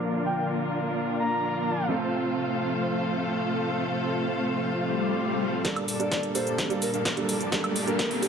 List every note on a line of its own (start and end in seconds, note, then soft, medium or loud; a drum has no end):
0.00 1.86 D3 medium
0.00 1.86 F3 medium
0.00 5.61 F3 medium
0.00 1.86 A#3 medium
0.00 1.87 A#3 medium
0.00 1.87 D4 medium
0.00 1.87 F4 medium
0.00 5.61 F4 medium
0.00 1.86 A#4 medium
0.00 1.88 A#4 medium
0.00 1.87 D5 medium
0.00 1.87 F5 medium
0.26 0.33 G5 medium
0.37 0.45 G5 medium
1.19 1.85 A#5 medium
1.88 5.61 C3 medium
1.88 5.61 F3 medium
1.88 5.62 A3 medium
1.88 5.61 A3 medium
1.88 5.62 C4 medium
1.88 5.62 F4 medium
1.88 5.61 A4 medium
1.88 5.62 A4 medium
1.88 5.62 C5 medium
1.88 5.62 F5 medium
4.71 swell medium
5.64 8.28 A#2 medium
5.64 5.82 G3 medium
5.64 5.97 G3 loud
5.64 8.28 G3 medium
5.64 5.82 A#3 medium
5.64 5.97 A#3 medium
5.64 5.97 D4 medium
5.64 8.28 D4 medium
5.64 5.82 D4 medium
5.64 5.97 A4 medium
5.64 7.50 A4 medium
5.64 5.83 A4 medium
5.64 5.97 D5 loud
5.64 kick loud
5.64 snare soft
5.64 closed hi-hat medium
5.64 riser medium
5.64 shaker soft
5.76 closed hi-hat soft
5.76 high woodblock medium
5.88 open hi-hat medium
5.88 shaker medium
5.99 6.32 G3 medium
5.99 6.44 G3 medium
5.99 6.32 A#3 medium
5.99 6.44 A#3 medium
5.99 6.44 D4 medium
5.99 6.32 D4 medium
5.99 6.44 A4 medium
5.99 6.32 A4 medium
5.99 6.20 D5 medium
5.99 6.44 F5 loud
5.99 closed hi-hat soft
5.99 shaker soft
6.12 kick loud
6.12 snare soft
6.12 closed hi-hat medium
6.12 shaker soft
6.23 closed hi-hat soft
6.34 6.67 G3 medium
6.34 6.67 A#3 medium
6.34 6.67 D4 medium
6.34 6.68 A4 medium
6.34 6.56 C5 medium
6.34 open hi-hat loud
6.34 shaker medium
6.47 6.79 G3 medium
6.47 6.79 A#3 medium
6.47 6.79 D4 medium
6.47 6.79 A4 medium
6.47 6.79 D5 loud
6.47 closed hi-hat soft
6.47 shaker soft
6.58 kick loud
6.58 snare soft
6.58 closed hi-hat medium
6.58 shaker soft
6.70 6.88 G3 medium
6.70 6.88 A#3 medium
6.70 6.88 D4 medium
6.70 6.88 A4 medium
6.70 closed hi-hat soft
6.70 shaker soft
6.82 6.89 A#4 medium
6.82 open hi-hat loud
6.82 shaker medium
6.93 7.02 G3 medium
6.93 7.02 A#3 medium
6.93 7.02 D4 medium
6.93 7.02 A4 medium
6.93 7.01 A#4 medium
6.93 7.02 F5 medium
6.93 closed hi-hat soft
6.93 shaker soft
7.05 7.49 G3 medium
7.05 7.49 A#3 medium
7.05 7.49 D4 medium
7.05 7.49 A4 medium
7.05 7.49 D5 loud
7.05 kick loud
7.05 snare medium
7.05 closed hi-hat medium
7.05 shaker soft
7.16 7.34 G3 medium
7.16 7.35 A#3 medium
7.16 7.35 D4 medium
7.16 7.35 A4 medium
7.16 closed hi-hat soft
7.29 open hi-hat loud
7.29 shaker medium
7.41 closed hi-hat soft
7.41 shaker soft
7.52 7.70 G3 medium
7.52 7.84 G3 loud
7.52 7.70 A#3 medium
7.52 7.84 A#3 medium
7.52 7.84 D4 medium
7.52 7.70 D4 medium
7.52 8.28 G4 medium
7.52 7.84 A4 medium
7.52 7.70 A4 medium
7.52 7.84 D5 loud
7.52 kick loud
7.52 snare medium
7.52 closed hi-hat medium
7.52 shaker soft
7.64 closed hi-hat soft
7.64 high woodblock medium
7.76 open hi-hat loud
7.76 shaker medium
7.87 8.19 G3 medium
7.87 8.28 G3 loud
7.87 8.20 A#3 medium
7.87 8.28 A#3 medium
7.87 8.28 D4 medium
7.87 8.20 D4 medium
7.87 8.28 A4 medium
7.87 8.20 A4 medium
7.87 8.08 A#4 medium
7.87 8.28 F5 loud
7.87 closed hi-hat soft
7.87 shaker soft
7.99 kick loud
7.99 snare medium
7.99 closed hi-hat medium
7.99 shaker soft
8.11 open hi-hat medium
8.22 8.28 G3 medium
8.22 8.28 A#3 medium
8.22 8.28 D4 medium
8.22 8.28 G4 medium
8.22 8.28 A4 medium
8.22 open hi-hat loud
8.22 shaker medium